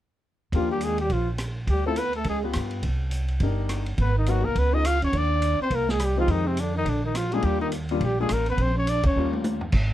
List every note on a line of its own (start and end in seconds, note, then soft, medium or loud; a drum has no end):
0.52 1.08 D#2 medium
0.52 0.70 F3 medium
0.52 0.97 A#3 medium
0.52 0.97 D4 soft
0.52 0.70 F4 medium
0.52 0.97 F4 soft
0.52 0.97 G4 medium
0.52 kick soft
0.52 ride soft
0.71 0.87 G3 medium
0.71 0.85 G4 medium
0.81 1.00 G#4 medium
0.81 hi-hat pedal soft
0.81 ride medium
0.85 1.01 G#3 medium
0.98 1.14 G4 medium
0.98 ride soft
1.03 1.14 G3 medium
1.10 1.65 A#1 medium
1.10 1.29 F3 medium
1.10 1.29 F4 medium
1.10 kick soft
1.10 ride soft
1.38 cross-stick medium
1.38 hi-hat pedal medium
1.38 ride medium
1.67 2.23 D2 medium
1.67 1.86 G3 medium
1.67 1.85 G4 medium
1.67 kick soft
1.67 ride medium
1.86 2.01 A3 medium
1.86 1.96 C4 medium
1.86 1.97 E4 medium
1.86 1.97 F4 medium
1.86 1.99 A4 medium
1.86 1.97 A4 medium
1.96 2.15 B4 medium
1.96 hi-hat pedal soft
1.96 ride medium
2.00 2.15 B3 medium
2.13 2.26 A3 medium
2.13 2.26 A4 medium
2.13 ride soft
2.24 2.52 C#2 medium
2.24 2.43 G#3 medium
2.24 kick soft
2.24 ride soft
2.29 2.39 G#4 medium
2.43 2.82 B3 medium
2.43 2.81 F4 soft
2.43 2.82 G4 medium
2.43 2.82 B4 medium
2.53 2.82 G2 medium
2.53 cross-stick medium
2.53 hi-hat pedal medium
2.53 ride medium
2.71 ride soft
2.83 3.38 C2 medium
2.83 kick soft
2.83 ride medium
3.11 hi-hat pedal medium
3.11 ride soft
3.28 ride soft
3.40 3.95 G1 medium
3.40 3.85 D4 medium
3.40 3.84 D#4 soft
3.40 3.85 G4 soft
3.40 3.85 A#4 medium
3.40 kick soft
3.40 ride soft
3.69 cross-stick medium
3.69 hi-hat pedal medium
3.69 ride medium
3.86 ride soft
3.98 4.41 G#1 medium
3.98 4.16 B3 medium
3.98 4.16 B4 medium
3.98 kick soft
3.98 ride soft
4.17 4.30 D#3 medium
4.17 4.31 D#4 medium
4.26 4.46 F#3 medium
4.26 4.43 B3 medium
4.26 4.43 D#4 soft
4.26 4.43 F#4 medium
4.26 4.46 F#4 medium
4.26 4.43 A#4 medium
4.26 hi-hat pedal soft
4.26 ride soft
4.44 4.55 C2 medium
4.44 4.59 A#3 medium
4.44 4.60 A#4 medium
4.55 4.98 C#2 medium
4.55 4.76 B3 medium
4.55 4.75 B4 medium
4.55 kick soft
4.55 ride medium
4.72 4.83 B3 soft
4.72 4.84 D#4 soft
4.72 4.88 D#4 medium
4.72 4.84 F4 soft
4.72 4.84 G#4 medium
4.72 4.88 D#5 medium
4.85 5.01 F4 medium
4.85 5.03 F5 medium
4.85 cross-stick medium
4.85 hi-hat pedal medium
4.85 ride medium
5.02 5.12 D2 medium
5.02 5.16 C#4 medium
5.02 5.19 C#5 medium
5.02 ride soft
5.13 5.56 D#2 medium
5.13 5.60 D4 medium
5.13 kick soft
5.13 ride medium
5.18 5.62 D5 medium
5.42 hi-hat pedal soft
5.42 ride medium
5.60 5.74 C4 medium
5.60 5.77 C5 medium
5.60 muted upright bass stroke soft
5.70 6.26 C2 medium
5.70 5.91 A#3 medium
5.70 kick soft
5.70 ride medium
5.75 5.92 A#4 medium
5.89 6.02 G#3 medium
5.89 6.06 G#4 medium
5.89 snare soft
5.99 6.17 G3 medium
5.99 cross-stick medium
5.99 hi-hat pedal medium
5.99 ride medium
6.04 6.19 G4 medium
6.17 6.33 F3 medium
6.17 6.55 G#3 medium
6.17 6.56 C4 medium
6.17 6.56 D#4 medium
6.17 6.32 F4 medium
6.17 6.56 G4 medium
6.27 6.83 F2 medium
6.27 6.50 D#3 medium
6.27 6.49 D#4 medium
6.27 kick soft
6.27 ride medium
6.47 6.62 C3 medium
6.47 6.61 C4 medium
6.57 6.75 D3 medium
6.57 6.76 D4 medium
6.57 hi-hat pedal soft
6.57 ride medium
6.76 6.90 D#3 medium
6.76 6.91 D#4 medium
6.85 7.40 A#1 medium
6.85 7.03 D3 medium
6.85 7.05 D4 medium
6.85 kick soft
6.85 ride medium
7.03 7.18 D#3 medium
7.03 7.18 D#4 medium
7.15 7.33 F3 medium
7.15 7.35 F4 medium
7.15 cross-stick medium
7.15 hi-hat pedal medium
7.15 ride medium
7.32 7.71 G3 medium
7.32 7.46 G#3 medium
7.32 7.71 A#3 medium
7.32 7.71 D4 medium
7.32 7.71 F4 medium
7.32 7.46 G#4 medium
7.32 ride soft
7.42 7.98 D#2 medium
7.42 7.60 G3 medium
7.42 7.61 G4 medium
7.42 kick soft
7.42 ride medium
7.61 7.72 D#3 medium
7.61 7.68 D#4 medium
7.72 hi-hat pedal medium
7.72 ride medium
7.89 8.01 G3 medium
7.89 8.01 A#3 medium
7.89 8.01 D4 medium
7.89 8.01 F4 medium
7.89 ride soft
8.01 8.28 A#1 medium
8.01 8.19 G3 medium
8.01 8.19 G4 medium
8.01 kick soft
8.01 ride soft
8.20 8.30 G3 medium
8.20 8.34 G#3 medium
8.20 8.30 A#3 soft
8.20 8.30 D4 soft
8.20 8.30 F4 medium
8.20 8.35 G#4 medium
8.29 8.57 A1 medium
8.29 8.48 A#3 medium
8.29 cross-stick medium
8.29 hi-hat pedal medium
8.29 ride medium
8.33 8.49 A#4 medium
8.46 8.61 B3 medium
8.46 8.64 B4 medium
8.46 ride soft
8.57 9.01 A#1 medium
8.57 8.75 C4 medium
8.57 kick soft
8.57 ride soft
8.62 8.78 C5 medium
8.75 8.91 C#4 medium
8.75 8.91 C#5 medium
8.87 9.04 D4 medium
8.87 9.06 D5 medium
8.87 hi-hat pedal medium
8.87 ride medium
9.03 9.15 D2 medium
9.03 9.31 C#4 medium
9.03 9.32 C#5 medium
9.03 kick medium
9.03 ride medium
9.16 9.71 D#2 medium
9.16 9.59 G3 medium
9.16 9.60 A#3 medium
9.16 9.59 C#4 medium
9.16 9.60 F4 medium
9.33 high tom soft
9.44 hi-hat pedal soft
9.44 high tom medium
9.61 floor tom medium
9.72 9.93 G#1 medium
9.72 kick medium
9.72 crash medium